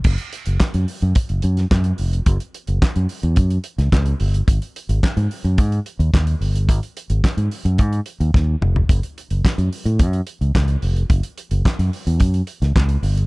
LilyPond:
<<
  \new Staff \with { instrumentName = "Fingered electric bass" } { \clef bass \time 4/4 \key fis \dorian \tempo 4 = 109 fis,,16 r8 fis,,16 r16 fis,16 r16 fis,16 r16 fis,,16 fis,8 fis,8 eis,,8 | fis,,16 r8 fis,,16 r16 fis,16 r16 e,16 fis,8 r16 cis,16 cis,8 g,,8 | gis,,16 r8 gis,,16 r16 gis,16 r16 fis,16 gis,8 r16 dis,16 dis,8 g,,8 | gis,,16 r8 gis,,16 r16 gis,16 r16 fis,16 gis,8 r16 dis,16 dis,8 eis,,8 |
fis,,16 r8 fis,,16 r16 fis,16 r16 a,16 fis,8 r16 cis,16 cis,8 eis,,8 | fis,,16 r8 fis,,16 r16 fis,16 r16 e,16 fis,8 r16 cis,16 cis,8 g,,8 | }
  \new DrumStaff \with { instrumentName = "Drums" } \drummode { \time 4/4 <cymc bd>16 hh16 hh16 hh16 <hc bd sn>16 hh16 hho16 hh16 <hh bd>16 hh16 hh16 <hh sn>16 <hc bd sn>16 hh16 hho16 hh16 | <hh bd>16 hh16 hh16 hh16 <hc bd sn>16 hh16 hho16 hh16 <hh bd>16 hh16 hh16 <hh sn>16 <hc bd sn>16 hh16 hho16 hh16 | <hh bd>16 hh16 hh16 hh16 <hc bd sn>16 hh16 hho16 hh16 <hh bd>16 hh16 hh16 hh16 <hc bd sn>16 hh16 hho16 hh16 | <hh bd>16 hh16 hh16 hh16 <hc bd sn>16 hh16 hho16 hh16 <hh bd>16 hh16 hh16 hh16 <bd sn>8 toml16 tomfh16 |
<hh bd>16 hh16 hh16 hh16 <hc bd sn>16 hh16 hho16 hh16 <hh bd>16 hh16 hh16 hh16 <hc bd sn>16 hh16 hho16 hh16 | <hh bd>16 hh16 hh16 hh16 <hc bd sn>16 hh16 hho16 hh16 <hh bd>16 hh16 hh16 <hh sn>16 <hc bd sn>16 hh16 hho16 hh16 | }
>>